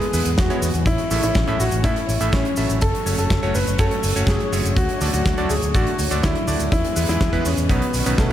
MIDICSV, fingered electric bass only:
0, 0, Header, 1, 2, 480
1, 0, Start_track
1, 0, Tempo, 487805
1, 852, Time_signature, 4, 2, 24, 8
1, 8193, End_track
2, 0, Start_track
2, 0, Title_t, "Fingered electric bass"
2, 0, Program_c, 0, 33
2, 132, Note_on_c, 0, 40, 95
2, 228, Note_off_c, 0, 40, 0
2, 252, Note_on_c, 0, 40, 82
2, 348, Note_off_c, 0, 40, 0
2, 380, Note_on_c, 0, 40, 100
2, 472, Note_off_c, 0, 40, 0
2, 613, Note_on_c, 0, 40, 96
2, 708, Note_off_c, 0, 40, 0
2, 732, Note_on_c, 0, 40, 83
2, 828, Note_off_c, 0, 40, 0
2, 844, Note_on_c, 0, 33, 100
2, 944, Note_off_c, 0, 33, 0
2, 1093, Note_on_c, 0, 33, 94
2, 1188, Note_off_c, 0, 33, 0
2, 1213, Note_on_c, 0, 33, 82
2, 1308, Note_off_c, 0, 33, 0
2, 1330, Note_on_c, 0, 33, 104
2, 1427, Note_off_c, 0, 33, 0
2, 1453, Note_on_c, 0, 33, 78
2, 1548, Note_off_c, 0, 33, 0
2, 1573, Note_on_c, 0, 33, 94
2, 1668, Note_off_c, 0, 33, 0
2, 1694, Note_on_c, 0, 33, 79
2, 1789, Note_off_c, 0, 33, 0
2, 1810, Note_on_c, 0, 45, 101
2, 1907, Note_off_c, 0, 45, 0
2, 2052, Note_on_c, 0, 33, 93
2, 2148, Note_off_c, 0, 33, 0
2, 2172, Note_on_c, 0, 33, 84
2, 2268, Note_off_c, 0, 33, 0
2, 2291, Note_on_c, 0, 33, 103
2, 2387, Note_off_c, 0, 33, 0
2, 2532, Note_on_c, 0, 33, 95
2, 2628, Note_off_c, 0, 33, 0
2, 2652, Note_on_c, 0, 33, 83
2, 2748, Note_off_c, 0, 33, 0
2, 2778, Note_on_c, 0, 30, 99
2, 2871, Note_off_c, 0, 30, 0
2, 3013, Note_on_c, 0, 30, 93
2, 3108, Note_off_c, 0, 30, 0
2, 3131, Note_on_c, 0, 30, 82
2, 3227, Note_off_c, 0, 30, 0
2, 3252, Note_on_c, 0, 30, 106
2, 3348, Note_off_c, 0, 30, 0
2, 3372, Note_on_c, 0, 30, 78
2, 3468, Note_off_c, 0, 30, 0
2, 3492, Note_on_c, 0, 30, 95
2, 3588, Note_off_c, 0, 30, 0
2, 3613, Note_on_c, 0, 30, 77
2, 3708, Note_off_c, 0, 30, 0
2, 3731, Note_on_c, 0, 42, 99
2, 3827, Note_off_c, 0, 42, 0
2, 3972, Note_on_c, 0, 30, 97
2, 4068, Note_off_c, 0, 30, 0
2, 4093, Note_on_c, 0, 30, 83
2, 4188, Note_off_c, 0, 30, 0
2, 4200, Note_on_c, 0, 30, 104
2, 4302, Note_off_c, 0, 30, 0
2, 4453, Note_on_c, 0, 30, 95
2, 4548, Note_off_c, 0, 30, 0
2, 4572, Note_on_c, 0, 30, 83
2, 4668, Note_off_c, 0, 30, 0
2, 4690, Note_on_c, 0, 38, 100
2, 4787, Note_off_c, 0, 38, 0
2, 4933, Note_on_c, 0, 38, 97
2, 5028, Note_off_c, 0, 38, 0
2, 5053, Note_on_c, 0, 38, 84
2, 5148, Note_off_c, 0, 38, 0
2, 5172, Note_on_c, 0, 38, 104
2, 5268, Note_off_c, 0, 38, 0
2, 5295, Note_on_c, 0, 38, 79
2, 5389, Note_off_c, 0, 38, 0
2, 5415, Note_on_c, 0, 38, 97
2, 5509, Note_off_c, 0, 38, 0
2, 5535, Note_on_c, 0, 38, 80
2, 5629, Note_off_c, 0, 38, 0
2, 5653, Note_on_c, 0, 33, 102
2, 5748, Note_off_c, 0, 33, 0
2, 5895, Note_on_c, 0, 38, 97
2, 5989, Note_off_c, 0, 38, 0
2, 6014, Note_on_c, 0, 38, 83
2, 6109, Note_off_c, 0, 38, 0
2, 6140, Note_on_c, 0, 38, 107
2, 6232, Note_off_c, 0, 38, 0
2, 6374, Note_on_c, 0, 38, 100
2, 6469, Note_off_c, 0, 38, 0
2, 6493, Note_on_c, 0, 38, 81
2, 6588, Note_off_c, 0, 38, 0
2, 6612, Note_on_c, 0, 40, 99
2, 6708, Note_off_c, 0, 40, 0
2, 6854, Note_on_c, 0, 40, 92
2, 6949, Note_off_c, 0, 40, 0
2, 6973, Note_on_c, 0, 40, 83
2, 7068, Note_off_c, 0, 40, 0
2, 7093, Note_on_c, 0, 40, 102
2, 7188, Note_off_c, 0, 40, 0
2, 7212, Note_on_c, 0, 40, 79
2, 7308, Note_off_c, 0, 40, 0
2, 7334, Note_on_c, 0, 40, 97
2, 7429, Note_off_c, 0, 40, 0
2, 7454, Note_on_c, 0, 40, 80
2, 7549, Note_off_c, 0, 40, 0
2, 7571, Note_on_c, 0, 35, 104
2, 7667, Note_off_c, 0, 35, 0
2, 7813, Note_on_c, 0, 35, 96
2, 7908, Note_off_c, 0, 35, 0
2, 7933, Note_on_c, 0, 35, 82
2, 8028, Note_off_c, 0, 35, 0
2, 8051, Note_on_c, 0, 35, 104
2, 8148, Note_off_c, 0, 35, 0
2, 8193, End_track
0, 0, End_of_file